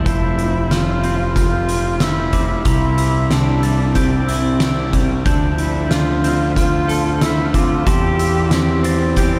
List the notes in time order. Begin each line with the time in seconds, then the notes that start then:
0.05 F1 F3 E4 C5 A5 G6, kick, closed hi-hat
0.39 closed hi-hat
0.71 F4 F6, snare, closed hi-hat
1.04 C4 G6, closed hi-hat
1.36 F4 F6, kick, closed hi-hat
1.69 closed hi-hat
2.00 E4 E6, snare, closed hi-hat
2.33 C4 D6, kick, closed hi-hat
2.65 C2 C3 E4 G4 C5 A#5 C6, kick, closed hi-hat
2.98 E6, closed hi-hat
3.30 D4 G4, snare, closed hi-hat
3.63 G3 A6, closed hi-hat
3.95 C4 G4 G6, kick, closed hi-hat
4.27 E4 E6, closed hi-hat
4.60 G4, snare, closed hi-hat
4.93 G3, kick, closed hi-hat
5.26 D2 D3 F3 D4 C5 D5 A5 G6, kick, closed hi-hat
5.58 E4, closed hi-hat
5.90 F4 F6, snare, closed hi-hat
6.24 C4 G6, closed hi-hat
6.56 F4 F6, kick, closed hi-hat
6.88 A4, closed hi-hat
7.21 E4 E6, snare, closed hi-hat
7.53 C4 F4 D6, kick, closed hi-hat
7.86 E2 G4 E5 A5 C6, kick, closed hi-hat
8.19 E6, closed hi-hat
8.51 C4 G4, snare, closed hi-hat
8.83 C4 A6, closed hi-hat
9.16 G4 G6, kick, closed hi-hat